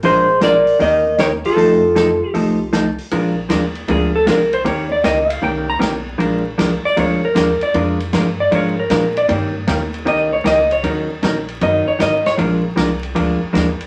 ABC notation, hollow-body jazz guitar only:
X:1
M:4/4
L:1/16
Q:"Swing" 1/4=155
K:Bbmix
V:1 name="Hollow-body jazz guitar"
[F,A,DFB]2 z2 [F,A,DFB] z3 [E,B,_DGB]2 z2 [E,B,DGB] z3 | [F,=A,E=A]2 z2 [F,A,EA] z3 [F,A,EA]2 z2 [F,A,EA] z3 | [F,A,DFB]2 z2 [F,A,DFB] z3 [F,A,DFB]2 z2 [F,A,DFB] z3 | [E,B,_DGB]2 z2 [E,B,DGB] z3 [E,B,DGB]2 z2 [E,B,DGB] z3 |
[F,A,DFB]2 z2 [F,A,DFB] z3 [F,A,DFB]2 z2 [F,A,DFB] z3 | [F,A,DFB]2 z2 [F,A,DFB] z3 [F,A,DFB]2 z2 [F,A,DFB] z3 | [E,B,_DGB]2 z2 [E,B,DGB] z3 [E,B,DGB]2 z2 [E,B,DGB] z3 | [E,_G,_DEB]2 z2 [E,G,DEB] z3 [E,G,DEB]2 z2 [E,G,DEB] z3 |
[F,A,DFB]2 z2 [F,A,DFB] z3 [F,A,DFB]2 z2 [F,A,DFB] z3 |]